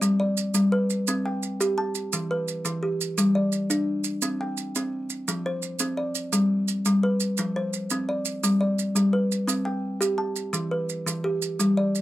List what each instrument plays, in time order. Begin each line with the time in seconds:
Already playing: kalimba D5
0.01 kalimba G3, maracas
0.20 kalimba D5
0.37 maracas
0.54 kalimba G3, maracas
0.72 kalimba B4
0.90 maracas
1.07 kalimba C4, maracas
1.26 kalimba G5
1.43 maracas
1.61 kalimba G4, maracas
1.78 kalimba A5
1.95 maracas
2.13 kalimba E3, maracas
2.31 kalimba B4
2.48 maracas
2.65 kalimba E3, maracas
2.83 kalimba G4
3.01 maracas
3.18 kalimba G3, maracas
3.35 kalimba D5
3.52 maracas
3.70 kalimba D4, maracas
4.04 maracas
4.22 kalimba C4, maracas
4.41 kalimba G5
4.57 maracas
4.75 kalimba C4, maracas
5.10 maracas
5.28 kalimba F3, maracas
5.46 kalimba C5
5.62 maracas
5.79 kalimba C4, maracas
5.97 kalimba D5
6.15 maracas
6.33 kalimba G3, maracas
6.68 maracas
6.85 kalimba G3, maracas
7.03 kalimba B4
7.20 maracas
7.37 kalimba F3, maracas
7.56 kalimba C5
7.73 maracas
7.90 kalimba C4, maracas
8.09 kalimba D5
8.25 maracas
8.44 kalimba G3, maracas
8.61 kalimba D5
8.79 maracas
8.96 kalimba G3, maracas
9.13 kalimba B4
9.32 maracas
9.47 kalimba C4, maracas
9.65 kalimba G5
10.01 kalimba G4, maracas
10.18 kalimba A5
10.36 maracas
10.53 kalimba E3, maracas
10.71 kalimba B4
10.89 maracas
11.06 kalimba E3, maracas
11.24 kalimba G4
11.42 maracas
11.59 kalimba G3, maracas
11.77 kalimba D5
11.95 maracas